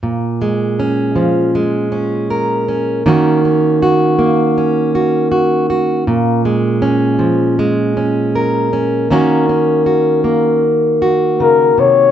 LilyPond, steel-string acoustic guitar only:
\new Staff \with { instrumentName = "Steel-string acoustic guitar" } { \time 4/4 \key bes \minor \tempo 4 = 79 << { r8 aes8 des'4 aes8 des'8 bes'8 des'8 | <bes des' ges'>8 des'8 ges'4 des'8 ges'8 ges'8 ges'8 | r8 aes8 des'4 aes8 des'8 bes'8 des'8 | <bes des' ges'>8 des'8 ges'4. ges'4. | } \\ { bes,4. f2~ f8 | ees4. bes2~ bes8 | bes,4. f2~ f8 | ees4. bes4. des8 c8 | } >> }